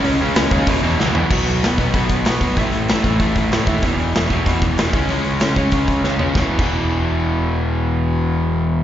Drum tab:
CC |----------------|x---------------|----------------|----------------|
HH |o---o---o-------|--o-o-o-o-o-o-o-|o-o-o-o-o-o-o-o-|o-o-o-o-o-o-o-o-|
SD |----o-------o---|----o-------o---|----o-------o---|----o-------o---|
FT |--------------o-|----------------|----------------|----------------|
BD |------o-o-------|o-----o-o-o---o-|o-----o-o-o---o-|o-----o-o-o---o-|

CC |----------------|---x------------|----------------|
HH |o-o-o-o-o-o-----|----------------|----------------|
SD |----o-------o---|o---------------|----------------|
FT |--------------o-|----------------|----------------|
BD |------o-o-o-----|o--o------------|----------------|